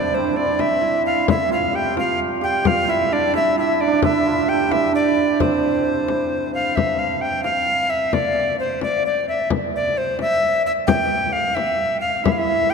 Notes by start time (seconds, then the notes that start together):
Already playing: C4 D4 E4 D5
0.14 C4 C5
0.36 D4 D5, frame drum
0.59 E4 E5, frame drum
0.81 E4
1.06 F5
1.28 E4 E5, frame drum
1.50 F4 F5, frame drum
1.73 G4 G5
1.97 F4 F5, frame drum
2.20 frame drum
2.41 G4 G5, frame drum
2.65 F4 F5, frame drum
2.88 E4 E5, frame drum
3.12 D4 D5
3.34 E4 E5, frame drum
3.57 E4 E5, frame drum
3.76 E5
3.81 D4 D5, frame drum
3.87 D4
3.92 D4
4.02 E4 E5, frame drum
4.26 F4, frame drum
4.47 G4 G5
4.69 E4 E5, frame drum
4.92 D4 D5
5.18 frame drum
5.40 C4 C5, frame drum
6.08 frame drum
6.32 frame drum
6.54 F5, frame drum
6.76 E5, frame drum
6.99 F5, frame drum
7.21 G5
7.44 F5, frame drum
7.90 E5
8.13 D5, frame drum
8.36 frame drum
8.59 C5
8.81 D5, frame drum
9.06 D5
9.29 E5
9.50 frame drum
9.73 D5, frame drum
9.98 C5
10.19 E5, frame drum
10.66 E5
10.87 G5, frame drum
11.11 frame drum
11.33 F5, frame drum
11.55 E5, frame drum
12.01 F5
12.24 E4 E5, frame drum
12.32 F5
12.38 E4 E5
12.49 frame drum
12.70 G4 G5